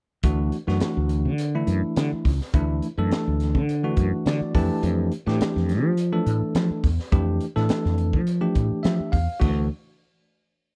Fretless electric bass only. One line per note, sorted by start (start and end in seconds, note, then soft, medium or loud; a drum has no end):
0.24 0.49 D2 loud
0.67 0.80 F#2 medium
0.81 muted fretless electric bass stroke soft
0.97 1.27 D2 medium
1.25 1.63 D3 medium
1.67 1.81 F#2 medium
1.82 muted fretless electric bass stroke soft
1.96 2.10 D3 medium
2.12 muted fretless electric bass stroke soft
2.25 2.38 C#2 medium
2.54 2.79 D2 loud
2.97 3.10 F#2 medium
3.11 muted fretless electric bass stroke soft
3.27 3.56 D2 medium
3.54 3.92 D3 medium
3.97 4.11 F#2 medium
4.12 muted fretless electric bass stroke soft
4.26 4.39 D3 medium
4.41 muted fretless electric bass stroke soft
4.55 4.68 F2 medium
4.83 5.08 F2 loud
5.26 5.39 A2 medium
5.40 muted fretless electric bass stroke soft
5.56 5.84 F2 medium
5.84 6.22 F3 medium
6.26 6.40 A2 medium
6.41 muted fretless electric bass stroke soft
6.55 6.68 F3 medium
6.70 muted fretless electric bass stroke soft
6.84 6.97 E2 medium
7.12 7.38 F2 loud
7.56 7.68 A2 medium
7.70 muted fretless electric bass stroke soft
7.85 8.15 F2 medium
8.13 8.51 F3 medium
8.56 8.69 A2 medium
8.71 muted fretless electric bass stroke soft
8.84 8.98 F3 medium
8.99 muted fretless electric bass stroke soft
9.13 9.26 E2 medium
9.41 9.68 D2 medium